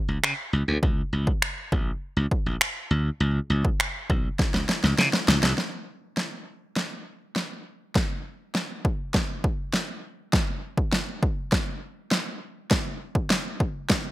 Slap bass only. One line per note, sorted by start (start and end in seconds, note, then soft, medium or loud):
0.08 0.18 C#2 medium
0.23 0.32 C#3 loud
0.53 0.62 C#2 medium
0.68 0.77 D2 medium
0.83 1.01 C#2 loud
1.13 1.31 C#2 medium
1.72 1.90 A#1 medium
2.17 2.26 C#2 medium
2.46 2.55 A#1 medium
2.91 3.09 D2 medium
3.20 3.39 C#2 loud
3.50 3.68 C#2 medium
4.10 4.28 B1 medium
4.54 4.63 C#2 medium
4.84 4.93 C#2 medium
4.98 5.08 C#3 medium
5.28 5.37 C#2 medium
5.43 5.52 C2 medium